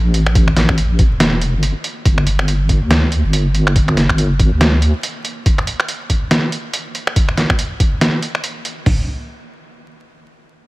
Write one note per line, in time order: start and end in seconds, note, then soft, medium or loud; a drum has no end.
0.00 1.10 A1 loud
0.14 closed hi-hat soft
0.26 finger snap medium
0.35 kick loud
0.35 closed hi-hat medium
0.48 finger snap soft
0.56 snare medium
0.56 closed hi-hat medium
0.69 finger snap medium
0.69 kick medium
0.78 closed hi-hat medium
0.99 kick loud
0.99 closed hi-hat medium
1.11 1.55 E1 medium
1.20 snare loud
1.20 closed hi-hat medium
1.42 closed hi-hat soft
1.54 1.73 G1 loud
1.63 closed hi-hat medium
1.84 closed hi-hat soft
2.05 2.80 G1 loud
2.05 kick loud
2.05 closed hi-hat medium
2.18 finger snap medium
2.27 closed hi-hat medium
2.39 finger snap medium
2.48 closed hi-hat medium
2.69 kick medium
2.69 closed hi-hat soft
2.82 3.23 D2 medium
2.91 snare loud
2.91 closed hi-hat medium
3.12 closed hi-hat soft
3.24 4.50 G1 medium
3.33 closed hi-hat medium
3.55 closed hi-hat soft
3.67 finger snap medium
3.76 kick loud
3.76 closed hi-hat medium
3.88 finger snap medium
3.97 snare medium
3.97 closed hi-hat medium
4.09 finger snap medium
4.09 kick medium
4.18 closed hi-hat medium
4.40 kick loud
4.40 closed hi-hat medium
4.52 4.93 D2 medium
4.61 snare loud
4.61 closed hi-hat medium
4.82 closed hi-hat soft
5.03 closed hi-hat medium
5.25 closed hi-hat soft
5.46 kick loud
5.46 closed hi-hat medium
5.58 finger snap medium
5.67 closed hi-hat medium
5.80 finger snap medium
5.88 closed hi-hat medium
6.10 kick medium
6.10 closed hi-hat medium
6.31 snare loud
6.31 closed hi-hat medium
6.52 closed hi-hat medium
6.74 closed hi-hat medium
6.95 closed hi-hat soft
7.07 finger snap medium
7.16 kick loud
7.16 closed hi-hat medium
7.29 finger snap medium
7.37 snare medium
7.37 closed hi-hat medium
7.50 finger snap medium
7.50 kick medium
7.59 closed hi-hat medium
7.80 kick medium
7.80 closed hi-hat medium
8.01 snare loud
8.01 closed hi-hat medium
8.23 closed hi-hat medium
8.35 finger snap medium
8.44 closed hi-hat medium
8.65 closed hi-hat medium
8.86 kick loud
8.86 floor tom loud
8.86 open hi-hat medium